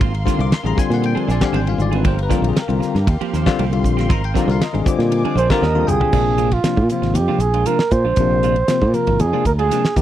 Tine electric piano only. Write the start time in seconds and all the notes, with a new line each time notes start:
0.25 D3 G3 C4 F4
0.41 D6
0.54 C6
0.63 D3 G3 C4 G#4 A#5
0.77 D3 G3 C4 F4 G#5
0.94 F#5
1.06 G5
1.20 A#4
1.31 D5
1.41 D3 G3 C4 G4
1.45 F5
1.56 G5
1.66 D3 G3 C4 F4 F5
1.82 D5
1.95 B4
2.08 C5
2.23 B4
2.29 D3 G3 C4 F4
2.35 A#4
2.49 G#4
2.62 A#4
2.68 D3 G3 C4 F4
3.08 C4 F4
3.46 D3 G3 C4 F4
3.72 D3 G3 C4 F4
4.01 C6
4.12 A#5
4.25 G5
4.35 D3 G3 C4 F4 D5
4.51 F5
4.63 D#5
4.73 D3 G3 C4 G#4
4.84 D3 G3 C4 F4
5.37 A#4
5.50 D3 G3 C4 F4
5.63 D#5
5.75 D3 G3 C4 F4
5.87 G5
6.13 C3 F3 A#3 D4
6.65 C3 F3 A#3 D4
6.79 A#3 D4
6.91 C3 F3 A#3 C4
7.29 C3 F3 A#3 C4
7.41 A#3 C4
7.66 C3 F3 A#3 D4
8.07 A#3 D4
8.18 C3 F3 A#3 D4
8.69 C3 F3 A#3 C4
8.83 A#3 D4
8.93 C3 F3 A#3 F4
9.32 C3 F3 A#3 D4
9.71 C3 F3 A#3 D4
9.97 C3 F3 A#3 D#4